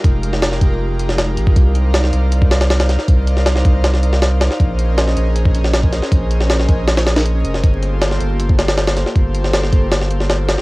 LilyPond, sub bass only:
\new Staff \with { instrumentName = "Sub bass" } { \clef bass \time 4/4 \key g \phrygian \tempo 4 = 158 f,,4. f,,2 aes,,16 g,,16 | c,4. c,2~ c,16 r16 | c,4. c,2~ c,16 r16 | bes,,4. bes,,2~ bes,,16 r16 |
bes,,4. bes,,2 f,,8 | g,,4. g,,2~ g,,16 r16 | g,,4. g,,2~ g,,16 r16 | }